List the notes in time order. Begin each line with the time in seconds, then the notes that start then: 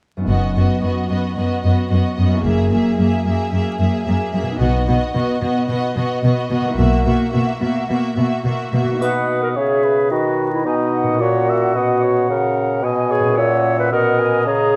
0.17 F#2 B3 D#4
0.23 F#1 F#2 F#4
0.28 B3 F#4 D#5
0.55 F#2 B3 F#4 D#5
0.82 F#2 B3 F#4 D#5
1.09 F#2 B3 F#4 D#5
1.37 F#2 B3 F#4 D#5
1.63 F#2 B3 F#4 D#5
1.90 F#2 B3 F#4 D#5
2.17 F#2 B3 F#4 D#5
2.27 F#2
2.31 A#3
2.36 E4
2.40 G#4
2.44 F#1 F#2 A#3 G#4 E5
2.71 F#2 A#3 G#4 E5
2.98 F#2 A#3 G#4 E5
3.25 F#2 A#3 G#4 E5
3.52 F#2 A#3 G#4 E5
3.79 F#2 A#3 G#4 E5
4.06 F#2 A#3 G#4 E5
4.32 F#2 A#3 G#4 E5
4.42 B2
4.47 B3
4.51 D#4
4.56 B1 F#4
4.60 B2 B3 D#5
4.87 B2 B3 F#4 D#5
5.14 B2 B3 F#4 D#5
5.41 B2 B3 F#4 D#5
5.68 B2 B3 F#4 D#5
5.96 B2 B3 F#4 D#5
6.23 B2 B3 F#4 D#5
6.50 B2 B3 F#4 D#5
6.61 B2
6.65 A#3
6.70 E4
6.74 B1 B2 F#4 E5
6.79 A#3 F#4
7.05 B2 A#3 F#4 E5
7.32 B2 A#3 F#4 E5
7.61 B2 A#3 F#4 E5
7.89 B2 A#3 F#4 E5
8.16 B2 A#3 F#4 E5
8.45 B2 A#3 F#4 E5
8.73 B2 A#3 F#4 E5
8.84 B2
8.88 B3
8.93 D#4
8.97 B2 F#4 F#5
9.02 B4 D#5, triangle
9.43 A#4
9.55 C#3 G#4 C#5 E5
9.84 B4
10.11 D#3 F#4 B4 D#5
10.52 E4
10.65 B2 D#4 D#5 G#5
10.93 F#5
11.03 A#2
11.08 C#4
11.12 F#4
11.20 A#2 F#4 C#5
11.49 E5
11.75 B2 D#5 F#5
12.03 C#5
12.30 C#3 A#4
12.82 B2 D#5 G#5
13.10 G#4 C#5
13.19 A#2
13.23 C#4
13.28 E4
13.33 F#4 F#5
13.37 A#2 C#5 E5
13.79 B4
13.91 B2 A#4 D#5 F#5
14.19 G#5
14.46 C#3 G#4 A#5